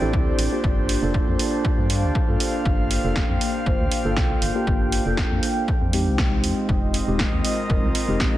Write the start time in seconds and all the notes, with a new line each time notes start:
Already playing: D4 G4 C5 D5 E5 G5
0.01 A1 C4 E4 G4 A4
0.13 D2, kick
0.39 A1, open hi-hat
0.52 A#3 D4 F4 G4
0.64 G1 A#3 F5 A5, kick
0.89 open hi-hat
1.02 F1 A#3 D4 F4 A4
1.14 kick
1.28 F2
1.39 open hi-hat
1.50 F5
1.65 kick
1.78 G2
1.90 open hi-hat
2.03 D2
2.15 kick
2.28 G2 A#3 D4 F4 A4
2.40 open hi-hat
2.65 G1 G5, kick
2.91 open hi-hat
3.04 F1 A#3 D4 F4 A4
3.16 kick, snare
3.29 F2
3.41 open hi-hat
3.66 G1 A#3 D4 F4 C5, kick
3.80 D2
3.92 open hi-hat
4.05 G1 A#3 D4 F4 A4
4.17 C2, kick, snare
4.42 G1, open hi-hat
4.55 A#3 D4 F4 G4
4.67 G1, kick
4.92 open hi-hat
5.05 F1 A#3 D4 F4 A4
5.17 kick, snare
5.31 F2
5.43 open hi-hat
5.68 G#3 C4 D#5, kick
5.82 F2
5.92 G#3 C4 D#4 F4 G4, open hi-hat
6.07 C2
6.18 kick, snare
6.29 D#5
6.44 F2, open hi-hat
6.69 F1, kick
6.88 A#4
6.94 open hi-hat
7.07 D#1 G#3 C4 D#4 G4
7.19 kick, snare
7.33 D#2
7.45 open hi-hat
7.69 F1 G#3 C4 D#4 A#4 F5, kick
7.83 C2
7.95 open hi-hat
8.08 F1 G#3 C4 D#4 G4
8.20 A#1, kick, snare